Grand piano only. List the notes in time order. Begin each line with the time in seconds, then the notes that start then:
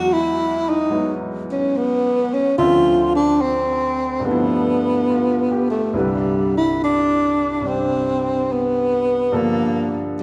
Already playing: E2 E3 F#3 G#3 D#5
0.90 F#3 G#3 B3 E4
2.58 D2 D3 F3 C4 E5
4.20 G2 D3
4.25 F3 A3 B3
4.31 E4
5.10 F4
5.51 G4
5.93 C2 G2 D3 E4 B4
7.61 G2 C3 G3 D4
9.32 G2 D3 F3 A#3 A4